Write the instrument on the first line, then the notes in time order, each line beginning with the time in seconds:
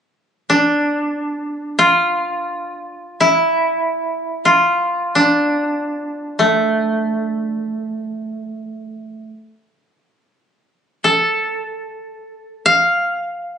koto
0.50 D4
1.79 F4
3.20 E4
4.45 F4
5.15 D4
6.39 A3
11.04 A4
12.66 F5